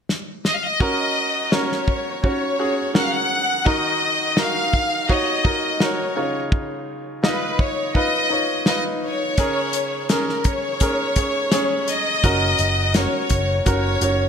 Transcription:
0.09 snare
0.45 violin section D#5, snare
0.53 violin section F5
0.62 violin section D#5
0.80 upright piano C#4 F#4 A#4, kick
1.52 upright piano C#4 F#4 A#4, violin section C#5, snare
1.72 snare
1.88 kick
2.23 upright piano C#4 F#4 C#5, violin section C#5, kick
2.58 upright piano C#4 F#4 G#4
2.94 upright piano C#4 F#4 A#4, violin section F#5, snare
3.03 violin section F5
3.11 violin section F#5
3.65 upright piano D#3 D#4 F#4 A#4, violin section D#5, kick
4.36 upright piano D#4 F#4 A#4, violin section F5, snare
4.73 kick
5.09 upright piano D#4 F#4 C#5, violin section D#5, kick
5.44 upright piano D#4 F#4 A#4, kick
5.80 upright piano D#4 F#4 A#4, violin section C#5, snare
6.16 upright piano C#3 D#4 F4 C#5
6.52 kick
7.23 upright piano D#4 F4 D#5, violin section B4, snare
7.59 violin section C#5, kick
7.94 upright piano D#4 F4 B4, violin section D#5, kick
8.30 upright piano D#4 F4 C#5
8.66 upright piano D#4 F4 B4, violin section D#5, snare
9.04 violin section C#5
9.38 upright piano C#3 C#4 G#4 A#4, kick, closed hi-hat
9.73 closed hi-hat
10.09 upright piano C#4 G#4 A#4, violin section A#4, snare, closed hi-hat
10.29 snare
10.44 violin section C#5, kick, closed hi-hat
10.80 upright piano C#4 G#4 A#4, kick, closed hi-hat
11.16 upright piano C#4 G#4 C#5, kick, closed hi-hat
11.52 upright piano C#4 G#4 C#5, snare, closed hi-hat
11.88 violin section D#5, closed hi-hat
12.23 picked electric bass F#1, upright piano C#4 F#4 A#4, kick, closed hi-hat
12.59 picked electric bass F#1, closed hi-hat
12.94 upright piano C#4 F#4 A#4, violin section C#5, snare, closed hi-hat
13.30 picked electric bass F#1, kick, closed hi-hat
13.65 picked electric bass F#1, upright piano C#4 F#4 A#4, violin section C#5, kick, closed hi-hat
14.01 picked electric bass F#1, upright piano C#4 F#4 C#5, closed hi-hat

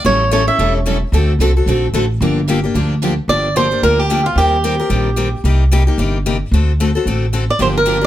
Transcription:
0.04 upright bass A1, steel-string acoustic guitar E3 G3 C#4 E4 A4 C#5
0.31 steel-string acoustic guitar E3 G3 C#4 E4 A4 C#5
0.47 steel-string acoustic guitar C#4 E4 A4 E5
0.59 upright bass E1, steel-string acoustic guitar E3 G3 C#4 E4 A4
0.86 steel-string acoustic guitar E3 G3 C#4 E4 A4
1.12 upright bass D2, steel-string acoustic guitar D3 A3 C4 F#4 A4
1.39 upright bass C2, steel-string acoustic guitar D3 A3 C4 F#4 A4
1.57 steel-string acoustic guitar C4 F#4 A4
1.66 upright bass A#1, steel-string acoustic guitar D3 A3 C4 F#4 A4
1.93 upright bass A1, steel-string acoustic guitar D3 A3 C4 F#4 A4
2.20 upright bass G1, steel-string acoustic guitar D3 F3 A#3 D4 G4
2.48 steel-string acoustic guitar D3 F3 A#3 D4 G4
2.64 steel-string acoustic guitar A#3 D4 G4
2.74 upright bass D2, steel-string acoustic guitar D3 F3 A#3 D4 G4
3.02 steel-string acoustic guitar D3 F3 A#3 D4 G4
3.28 upright bass G1, steel-string acoustic guitar D3 F3 A#3 D4 G4 D5
3.56 steel-string acoustic guitar D3 F3 A#3 D4 G4 C5
3.71 steel-string acoustic guitar A#3 D4 G4
3.82 upright bass D2, steel-string acoustic guitar D3 F3 A#3 D4 G4 A#4
3.99 steel-string acoustic guitar G4
4.10 steel-string acoustic guitar D3 F3 A#3 D4 G4
4.26 steel-string acoustic guitar F4
4.35 upright bass D#2, steel-string acoustic guitar D#3 G3 C4 G4 A#4
4.64 steel-string acoustic guitar D#3 G3 C4 G4 A#4
4.80 steel-string acoustic guitar C4 G4 A#4
4.90 upright bass A#1, steel-string acoustic guitar D#3 G3 C4 G4 A#4
5.16 steel-string acoustic guitar D#3 G3 C4 G4 A#4
5.44 upright bass C2, steel-string acoustic guitar C3 G3 A#3 D#4 G4
5.72 steel-string acoustic guitar C3 G3 A#3 D#4 G4
5.87 steel-string acoustic guitar A#3 D#4 G4
5.98 upright bass G1, steel-string acoustic guitar C3 G3 A#3 D#4 G4
6.26 steel-string acoustic guitar C3 G3 A#3 D#4 G4
6.51 upright bass D2, steel-string acoustic guitar D3 A3 C4 F#4 A4
6.80 steel-string acoustic guitar D3 A3 C4 F#4 A4
6.95 steel-string acoustic guitar C4 F#4 A4
7.06 upright bass A1, steel-string acoustic guitar D3 A3 C4 F#4 A4
7.33 steel-string acoustic guitar D3 A3 C4 F#4 A4
7.50 steel-string acoustic guitar D5
7.59 upright bass G1, steel-string acoustic guitar D3 F3 A#3 D4 G4 C5
7.78 steel-string acoustic guitar A#4
7.86 steel-string acoustic guitar D3 F3 A#3 D4 G4
8.01 steel-string acoustic guitar A#3 D4 G4

